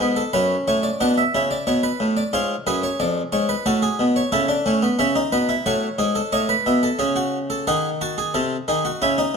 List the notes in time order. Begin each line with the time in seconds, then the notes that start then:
0.00 G#2 B3
0.16 A4
0.33 F#2 C#4 B4
0.68 A2 C#5
0.83 D5
1.01 B2 D4 F#5
1.18 E5
1.35 C#3 E4
1.51 D5
1.67 B2 C#5
1.83 B4
2.00 A2
2.17 D5
2.33 G#2 F4 C#5
2.67 F#2 G#4 B4
2.83 C#5
3.00 F2 D5
3.32 G#2 C#5
3.49 B4
3.66 A2 F#4 A4
3.82 G#4
3.99 B2
4.16 C#5
4.32 C#3 E4 A4
4.49 D4
4.66 A2 C#4
4.82 B3
4.99 C#3 C#4 E5
5.16 D#4
5.32 B2 B4
5.49 E4
5.66 A2 F#4 C#5
5.98 G#2 G#4
6.15 A4
6.32 A2 C#5 D#5
6.49 B4
6.66 B2 E5
6.83 A4
6.99 C#3 G#4
7.16 F#4
7.50 A4
7.67 D#3 G#4 F#5
8.01 F#4 A5
8.18 G#4
8.34 C3 A4
8.68 D#3 G#4
8.85 F#4
9.02 C#3 E4 G#5
9.18 D#4